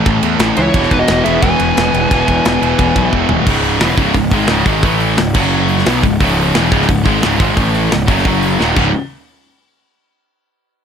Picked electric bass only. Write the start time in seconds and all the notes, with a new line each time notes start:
0.06 A1
0.23 E2
0.39 A1
0.58 C#2
0.74 E1
0.91 E1
1.10 E1
1.26 E1
1.43 E1
1.61 E1
1.78 E1
1.94 E1
2.11 E1
2.28 E1
2.46 E1
2.62 E1
2.79 E1
2.95 B1
3.13 E1
3.30 D#1
3.46 C#1
3.82 E1
3.97 C#1
4.15 C#1
4.31 G#1
4.49 C#1
4.66 G#1
4.83 A1
5.17 C#1
5.35 F#1
5.87 B1
6.03 C#1
6.20 C#1
6.56 E1
6.72 C#1
6.89 C#1
7.06 G#1
7.24 C#1
7.40 G#1
7.57 A1
7.92 C#1
8.08 F#1
8.25 F#1
8.60 D#1
8.77 C#1